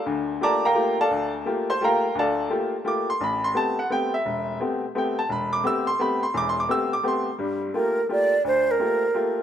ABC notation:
X:1
M:3/4
L:1/16
Q:"Swing" 1/4=172
K:Gdor
V:1 name="Flute"
z12 | z12 | z12 | z12 |
z12 | z12 | z12 | z4 B4 d4 |
c2 B8 z2 |]
V:2 name="Upright piano"
z4 [dabd']2 [Bfgb]4 [Adfa]2- | [Adfa]2 z4 [cc']2 [Bfgb]4 | [Adfa]4 z4 d'2 c'2 | =b2 c'2 a2 ^f2 g2 e2- |
e4 z4 g2 a2 | =b2 d'2 e'2 c'2 b2 c'2 | (3d'2 c'2 d'2 e'2 d'2 c'3 z | z12 |
z12 |]
V:3 name="Upright piano"
[D,,D,]4 [A,B,FG]2 z2 [A,B,FG]2 z2 | D,,4 [A,B,FG]2 z2 [A,B,FG]2 z2 | D,,4 [A,B,FG]2 z2 [A,B,FG]2 z2 | A,,,4 [A,=B,CG]2 z2 [A,B,CG]2 z2 |
E,,,4 [A,=B,CG]2 z2 [A,B,CG]2 z2 | E,,,4 [A,=B,CG]2 z2 [A,B,CG]2 z2 | [E,,,E,,]4 [A,=B,CG]2 z2 [A,B,CG]2 z2 | [G,,G,]4 [A,B,FG]2 z2 [A,B,FG]2 z2 |
D,,4 [A,B,FG]2 z2 [A,B,FG]2 z2 |]